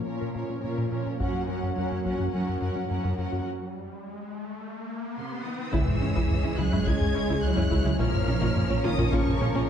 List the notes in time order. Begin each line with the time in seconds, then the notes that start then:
Already playing: F3 A#3 C#4 C#5
0.05 A#2 A#3 C#4 F4 A#4 C#5
0.21 A#2 A#4
0.34 A#2 A#3 C#4 F4 A#4 C#5
0.49 A#3 F4
0.61 A#2 C#4 F4 A#4 C#5
0.78 A#2 A#3
0.90 A#2 C#4 F4 A#4 C#5
1.06 A#2 A#4
1.20 F#2 F#3 C#4 F#4 A#4 C#5 F#5, taiko, riser
1.34 F#3
1.47 F#3 C#4 F#4 A#4 F#5
1.63 F#2 A#3
1.76 F#2 F#3 C#4 F#4 A#4 F#5
1.91 F#2 A#3
2.04 F#3 C#4 F#4 A#4 F#5, taiko
2.18 F#2 F#3
2.32 F#2 F#3 C#4 F#4 A#4 F#5
2.47 F#2 F#4
2.60 F#2 F#3 C#4 F#4 A#4 F#5
2.76 F#3 C#4
2.89 F#2 A#3 C#4 F#4 A#4 F#5
3.04 F#2 F#3
3.18 F#2 C#4 F#4 A#4 F#5
3.32 F#2 F#4
5.17 C3 C6
5.44 D#3 D#6
5.60 D#3 D#6
5.73 C#2 C#3 E3 G#3 C#4 E4 G#4 C#5 E6, taiko, sub drop
5.88 C#2, taiko low-mid
6.01 C#2 C#4 E4
6.16 C#2 C#3 E4, taiko
6.30 C#2, taiko low-mid
6.43 C#2 C#4 E4
6.58 C#2 C#3 F#3 E4 F#6
6.72 C#2 C#4 E4, taiko low-mid
6.86 C#2 C#3 G#3 E4 G#4 G#6, taiko
7.01 C#2, taiko low-mid
7.14 C#2 E3 C#4 E4
7.28 C#2 C#3 E4
7.43 C#2 F#3 E4 F#6
7.56 C#2 E3 C#4 E4, taiko low-mid
7.71 C#2 C#3 E4, taiko
7.85 C#2 C#3 G#3 E4
7.99 A#1 A#2 F3 A#3 C#4 F4 A#4 F6, taiko
8.14 A#2, taiko low-mid
8.27 A#1 A#2 C#4 D#4 A#4
8.42 A#1 A#2 A#3 C#4 F4, taiko
8.56 A#2 C#4, taiko low-mid
8.70 A#1 A#2 C#4 A#4
8.84 A#1 A#2 D#3 A#3 C#4 F4 D#6
8.98 A#1 A#2 C#4 F4 A#4, taiko low-mid
9.12 A#1 A#2 C#3 A#3 C#4 F4 C#6, taiko
9.26 A#2, taiko low-mid
9.40 A#1 A#2 C#4
9.54 A#1 A#2 A#3 C#4 F4